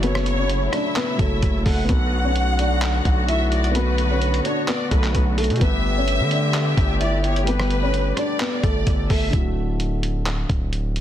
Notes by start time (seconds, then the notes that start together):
Already playing: F#1 C#3 F#3 A3 F#4 A4
0.00 F#3 B3 E4 F#4 B4 C#5, closed hi-hat
0.04 A4 C#5
0.15 cross-stick
0.26 closed hi-hat
0.39 C#4 C#5
0.49 closed hi-hat
0.73 D4 D5 E5, cross-stick, closed hi-hat
0.96 B3 B4, clap, closed hi-hat
1.18 F#1 F#3 A3 F#4 A4 C#5, kick, closed hi-hat
1.42 F#1, kick, closed hi-hat
1.66 F#1 A3 A4 F#5, kick, open hi-hat
1.85 B3 F#4 B4
1.89 B1 D3 B3 F#4 A4 B4 F#5, kick, closed hi-hat
2.24 C#4 C#5
2.36 closed hi-hat
2.59 D4 D5, closed hi-hat
2.82 clap, closed hi-hat
3.05 B1, kick, closed hi-hat
3.28 E4 E5, closed hi-hat
3.52 D5, closed hi-hat
3.64 closed hi-hat
3.71 B3 F#4 B4, closed hi-hat
3.76 B3 A4 B4
3.98 closed hi-hat
4.11 C#4 C#5
4.22 closed hi-hat
4.34 closed hi-hat
4.45 D4 C#5 D5, closed hi-hat
4.68 B3 B4 D5, clap, closed hi-hat
4.91 B1 A3 A4 B4, kick, closed hi-hat
5.04 clap
5.15 B1, kick, closed hi-hat
5.38 A3 A4, closed hi-hat, open hi-hat
5.44 closed hi-hat
5.50 B2, closed hi-hat
5.56 G3 G4, closed hi-hat
5.61 G1 A3 B3 G4 A4 B4 E5, kick, closed hi-hat
5.97 C#4 C#5
6.08 closed hi-hat
6.20 D3
6.31 D4 D5, closed hi-hat
6.54 clap, closed hi-hat
6.77 G1, kick, closed hi-hat
7.00 E4 D5 E5, closed hi-hat
7.24 C#5, closed hi-hat
7.36 closed hi-hat
7.44 G3 G4 B4, closed hi-hat
7.48 B3 A4 B4
7.60 cross-stick
7.70 closed hi-hat
7.83 C#4 C#5
7.94 closed hi-hat
8.17 D4 D5, cross-stick, closed hi-hat
8.40 B3 B4, clap, closed hi-hat
8.63 G1 A3 A4, kick, closed hi-hat
8.87 G1, kick, closed hi-hat
9.10 G1 A3 A4 E5, kick, open hi-hat
9.30 D1 D3 A3, kick, closed hi-hat
9.35 E4 F#4
9.80 closed hi-hat
10.03 closed hi-hat
10.26 clap, closed hi-hat
10.49 D1, kick, closed hi-hat
10.73 closed hi-hat
10.96 closed hi-hat